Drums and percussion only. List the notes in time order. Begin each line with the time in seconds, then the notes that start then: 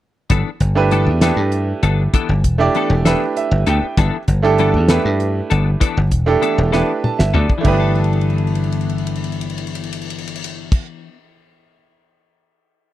0.30 kick, closed hi-hat
0.60 kick, closed hi-hat
0.91 closed hi-hat
1.21 snare, closed hi-hat
1.52 closed hi-hat
1.83 closed hi-hat
2.14 kick, closed hi-hat
2.44 kick, closed hi-hat
2.75 closed hi-hat
3.05 snare, closed hi-hat
3.37 closed hi-hat
3.66 closed hi-hat
3.97 kick, closed hi-hat
4.28 kick, closed hi-hat
4.58 closed hi-hat
4.88 snare, closed hi-hat
5.20 closed hi-hat
5.51 closed hi-hat
5.81 kick, closed hi-hat
6.11 kick, closed hi-hat
6.42 closed hi-hat
6.73 snare
7.04 mid tom
7.19 snare
7.34 floor tom
7.49 kick
7.64 kick, crash
7.95 crash
8.04 ride
8.13 crash
8.21 ride
8.30 crash
8.38 ride
8.47 crash
8.55 ride
8.64 crash
8.72 ride
8.81 crash
8.89 ride
8.98 crash
9.07 ride
9.15 crash
9.24 ride
9.32 crash
9.41 ride
9.50 crash
9.58 ride
9.67 crash
9.75 ride
9.84 crash
9.92 ride
10.01 crash
10.10 ride
10.18 crash
10.27 ride
10.36 crash
10.44 ride
10.72 kick, crash